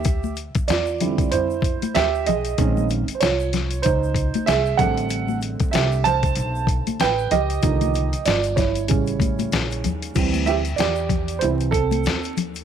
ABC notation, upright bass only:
X:1
M:4/4
L:1/16
Q:"Swing 16ths" 1/4=95
K:Am
V:1 name="Upright bass" clef=bass
D,,3 z E,,4 F,,3 z D,,2 B,,,2 | _B,,,3 z C,,4 _D,,3 z C,,2 A,,,2- | A,,,3 z C,,4 B,,,3 z A,,,2 ^C,,2 | C,,3 z G,,,4 A,,,3 z _B,,,2 _E,,2 |
[K:Cmix] D,,4 E,,4 C,,4 _E,,4 |]